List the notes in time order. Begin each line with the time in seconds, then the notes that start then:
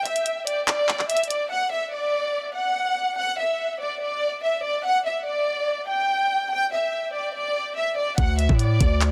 0.05 E5, closed hi-hat
0.16 closed hi-hat
0.26 closed hi-hat
0.47 D5, closed hi-hat
0.67 D5, clap, closed hi-hat
0.89 clap
0.99 clap
1.10 E5, closed hi-hat
1.17 closed hi-hat
1.24 closed hi-hat
1.30 D5, closed hi-hat
1.51 F#5
1.72 E5
1.93 D5
2.56 F#5
3.18 F#5
3.39 E5
3.81 D5
4.01 D5
4.43 E5
4.64 D5
4.84 F#5
5.05 E5
5.26 D5
5.88 G5
6.51 G5
6.72 E5
7.13 D5
7.34 D5
7.76 E5
7.97 D5
8.18 D2 F#5, kick, closed hi-hat
8.39 E5, closed hi-hat
8.49 A2, kick
8.59 D5, closed hi-hat
8.81 D2, kick, closed hi-hat
9.01 clap, closed hi-hat